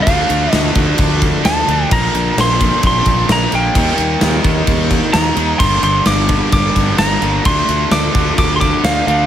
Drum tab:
CC |xxxxxxxx|xxxxxxxx|xxxxxxxx|xxxxxxxx|
SD |--o---o-|--o---o-|--o---o-|--o---o-|
BD |o--ooo--|o--ooo--|o--ooo--|o--ooo--|

CC |xxxxxxxx|
SD |--o---o-|
BD |o--ooo--|